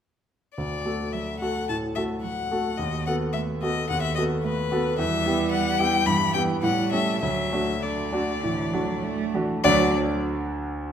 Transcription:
0.56 grand piano D2, violin D5
0.85 grand piano A3 F#4 A4
1.12 cello F#3, violin E5
1.40 grand piano A3 F#4 A4, violin F#5
1.69 grand piano A2, violin A5
1.95 grand piano A3 F#4 A4, violin E5
2.23 cello F#3, violin F#5
2.51 grand piano A3 F#4 A4
2.78 grand piano D#2, violin D#5
3.07 grand piano B3 F#4 A4, violin F#5
3.33 cello A3, violin E5
3.62 grand piano B3 F#4 A4, violin D#5
3.90 grand piano D#2, violin F#5
4.02 violin E5
4.15 grand piano B3 F#4 A4, violin D#5
4.44 cello A3, violin B4
4.72 grand piano B3 F#4 A4
4.98 grand piano E2, cello G3, violin E5
5.26 grand piano B3 E4 G4
5.51 violin F#5
5.79 grand piano B3 E4 G4, violin G5
6.06 grand piano G2, cello E3, violin B5
6.34 grand piano B3 E4 G4, violin G5
6.63 grand piano A2, cello G3, violin F#5
6.92 grand piano A3 C#4 G4, violin E5
7.22 grand piano D2, cello F#3, violin E5
7.53 grand piano A3 D4 F#4
7.82 cello D3, violin D5
8.12 grand piano A3 D4 F#4
8.43 grand piano A2, cello E3
8.73 cello F#3, grand piano A3 D4 F#4
9.04 cello A3
9.34 cello E3, grand piano A3 D4 F#4
9.64 grand piano D2 D3 A3 D4 F#4 D5, cello F#3, violin D5

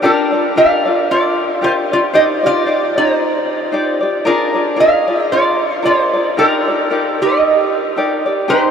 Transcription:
0.02 resonator guitar played with a steel bar D4 A#4, ukulele F4 G4 A#4 D5
0.32 ukulele F4 G4 D5
0.56 ukulele F4 G4 A#4 D5, resonator guitar played with a steel bar A#4 F5
0.85 ukulele F4 G4 D5
1.11 resonator guitar played with a steel bar F4 D5
1.61 ukulele F4 G4 A#4 D5, resonator guitar played with a steel bar F4 C5
1.92 resonator guitar played with a steel bar F4 D5, ukulele F4 G4 D5
2.13 ukulele D#4 G4 C5 D5, resonator guitar played with a steel bar G4 D#5
2.43 ukulele D#4 G4 D5, resonator guitar played with a steel bar F4 D5
2.66 ukulele D#4 G4 C5 D5
2.96 ukulele D#4 G4 D5, resonator guitar played with a steel bar D#4 C5
3.72 ukulele D#4 G4 C5 D5
4.01 ukulele D#4 G4 D5
4.25 resonator guitar played with a steel bar D4 A#4, ukulele F4 G#4 A#4 D5
4.54 ukulele F4 G#4 D5
4.76 ukulele F4 G#4 A#4 D5
4.80 resonator guitar played with a steel bar G#4 F5
5.08 ukulele F4 G#4 D5
5.22 resonator guitar played with a steel bar D#5
5.32 resonator guitar played with a steel bar F4 D5
5.82 ukulele F4 G#4 A#4 D5, resonator guitar played with a steel bar F4 C5
6.13 ukulele F4 G#4 D5
6.37 resonator guitar played with a steel bar D4 A#4, ukulele D#4 G4 A#4 D5
6.68 ukulele D#4 G4 D5
6.90 ukulele D#4 G4 A#4 D5
7.21 ukulele D#4 G4, resonator guitar played with a steel bar G4 D#5
7.96 ukulele D#4 G4 A#4 D5
8.26 ukulele D#4 G4 D5
8.48 ukulele D#4 G4 G#4 C5, resonator guitar played with a steel bar D#4 C5

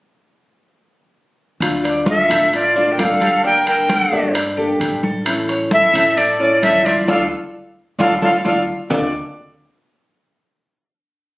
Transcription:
1.60 upright bass D2, nylon-string guitar D3 A3 D4 F4, high conga, high timbale, maracas
1.84 cuban tres D5, high conga, high timbale, maracas
2.06 cuban tres F4, flute A4 E5, high conga, maracas
2.29 upright bass A1, nylon-string guitar A3 D4 F4, cuban tres A4, high conga, high timbale, maracas
2.53 flute F4 D5, muted nylon-string guitar stroke, high conga, high timbale, maracas
2.76 nylon-string guitar A3 D4 F4, cuban tres D4, high conga, maracas
2.92 flute A#4 G5
2.97 upright bass G1, nylon-string guitar D3 A3 D4 F4, flute A4 F5, high conga, high timbale, low timbale, maracas
3.21 cuban tres G4, high conga, high timbale, maracas
3.43 nylon-string guitar D3 G3 A#3 D4, cuban tres D4, flute A#4 G5, maracas
3.66 flute A#4 G5, cuban tres A5, high conga, high timbale, maracas
3.89 high conga, high timbale, maracas
4.12 upright bass G2, nylon-string guitar G3 A#3 D4 A4, cuban tres D4, high conga, maracas
4.35 muted nylon-string guitar stroke, high conga, high timbale, maracas
4.57 nylon-string guitar G3 A#3 D4 A4, cuban tres G4, high conga
4.80 upright bass A2, nylon-string guitar G3 D4 A4, high conga, high timbale, maracas
5.03 cuban tres A4, high conga, maracas
5.25 nylon-string guitar E3 A3 C#4 E4, high conga, high timbale, maracas
5.49 cuban tres C#5, high conga, high timbale
5.71 cuban tres E4, flute A4 E5, high conga, maracas
5.93 upright bass A2, nylon-string guitar A3 C#4 E4, cuban tres A4, high conga, high timbale, maracas
6.16 flute A4 D5, muted nylon-string guitar stroke, high conga, high timbale, maracas
6.40 nylon-string guitar A3 C#4 E4, cuban tres C#4, high conga
6.61 upright bass D2, nylon-string guitar E3 A3 C#4 E4, flute A4 E5, high conga, high timbale, maracas
6.83 flute F4 D5, cuban tres F4, high conga, high timbale, maracas
7.08 upright bass D2, nylon-string guitar A3 D4 F4, cuban tres D4 F4 A4, flute A4 F5, high conga, high timbale, maracas
7.99 upright bass D2, nylon-string guitar A3 D4 F4, cuban tres D4 F4 A4, flute A4 F5, high conga, high timbale, maracas
8.22 upright bass D2, nylon-string guitar A3 D4 F4, cuban tres D4 F4 A4, flute A4 F5, high conga, high timbale, maracas
8.45 upright bass D2, nylon-string guitar A3 D4 F4, cuban tres D4 F4 A4, flute A4 F5, high conga, high timbale, maracas
8.90 upright bass D2, nylon-string guitar D3 A3 D4 F4, cuban tres D4 A4 D5, low conga, low timbale, maracas

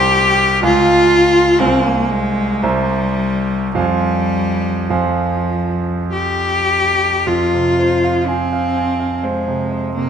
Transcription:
Already playing: grand piano C2 C5 G5 C6, cello G4
0.63 grand piano C#2 F5 G#5, cello F4
1.60 grand piano C2 C5 F5 G#5, cello C4
1.86 cello A#3
2.09 cello G#3
2.62 grand piano C2 C5 E5 A#5, cello G3
3.75 grand piano F2 C5 F5 G#5, cello G3
4.90 grand piano F2 C5 F5 G#5, cello F3
6.13 cello G4
7.27 grand piano F2, cello F4
7.54 grand piano C3
7.79 grand piano C5
8.04 grand piano F5
8.27 cello C4, grand piano G#5
8.53 grand piano F5
8.77 grand piano G#5
9.00 grand piano F5
9.23 cello G#3, grand piano C5
9.48 grand piano C3
9.72 grand piano C5
9.95 grand piano C3, cello A#3

